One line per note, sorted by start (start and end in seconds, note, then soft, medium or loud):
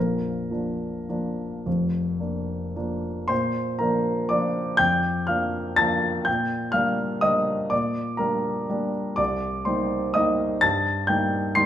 0.00 0.50 A#1 soft
0.00 0.50 A#2 soft
0.00 2.75 A#4 medium
0.51 1.05 F3 soft
0.51 1.05 A#3 soft
0.51 1.06 D4 soft
1.09 1.62 F3 soft
1.09 1.62 A#3 soft
1.09 1.62 D4 soft
1.66 2.19 F1 soft
1.66 2.19 F2 soft
2.20 2.72 A#3 soft
2.20 2.72 D4 soft
2.76 3.26 F3 soft
2.76 3.27 A#3 soft
2.76 3.26 D4 soft
3.28 3.79 A#2 medium
3.28 3.77 C5 medium
3.28 3.80 C6 medium
3.79 4.26 F3 soft
3.79 4.27 A#3 soft
3.79 4.27 D4 soft
3.79 4.27 A#4 soft
3.79 4.29 A#5 medium
4.29 4.75 F3 soft
4.29 4.75 A#3 soft
4.29 4.75 D4 soft
4.29 4.75 D5 medium
4.29 4.78 D6 medium
4.77 5.27 F2 soft
4.77 5.24 G5 medium
4.77 5.27 G6 medium
5.27 5.75 F3 soft
5.27 5.75 A#3 soft
5.27 5.75 D4 soft
5.27 5.75 F5 soft
5.27 5.78 F6 medium
5.76 6.23 F3 soft
5.76 6.23 A#3 soft
5.76 6.23 D4 soft
5.76 6.23 A5 medium
5.76 6.26 A6 medium
6.25 6.72 A#2 medium
6.25 6.70 G5 medium
6.25 6.73 G6 medium
6.72 7.19 G3 soft
6.72 7.20 A#3 soft
6.72 7.20 D4 soft
6.72 7.19 F5 medium
6.72 7.22 F6 medium
7.21 7.68 G3 soft
7.21 7.68 A#3 soft
7.21 7.68 D4 soft
7.21 7.68 D#5 medium
7.21 7.71 D#6 medium
7.70 8.18 A#2 soft
7.70 8.16 D5 medium
7.70 8.19 D6 medium
8.17 8.66 G3 soft
8.17 8.66 A#3 soft
8.17 8.67 D4 soft
8.17 8.91 A#4 soft
8.17 8.94 A#5 medium
8.69 9.14 G3 soft
8.69 9.15 A#3 soft
8.69 9.15 D4 soft
9.16 9.65 C2 soft
9.16 9.63 D5 medium
9.16 9.65 D6 medium
9.65 10.12 G3 soft
9.65 10.12 A#3 soft
9.65 10.12 D#4 soft
9.65 10.12 C5 soft
9.65 10.15 C6 medium
10.14 10.59 G3 soft
10.14 10.59 A#3 soft
10.14 10.60 D#4 soft
10.14 10.59 D#5 medium
10.14 10.62 D#6 medium
10.61 11.08 G2 soft
10.61 11.06 A5 medium
10.61 11.08 A6 medium
11.07 11.53 G3 soft
11.07 11.53 A#3 soft
11.07 11.53 D#4 soft
11.07 11.53 G5 soft
11.07 11.56 G6 medium
11.55 11.66 G3 soft
11.55 11.66 A#3 soft
11.55 11.66 D#4 soft
11.55 11.66 C6 medium
11.55 11.66 C7 medium